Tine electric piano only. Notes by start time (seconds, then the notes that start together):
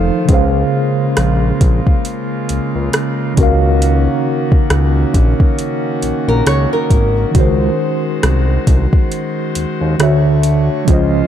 Already playing: F3 D#4 A4 C5 F5
0.25 C#3 C#4
0.30 G#4 C5
0.34 F5
3.34 C#3 C#4
3.39 F#4 A#4
3.43 F5
7.31 D#3 C#4
7.36 F#4 A#4
7.40 C5
9.99 D3 D4 F#4 C#5
10.03 E5
10.85 F3 C#4
10.89 F4 C5
10.94 D#5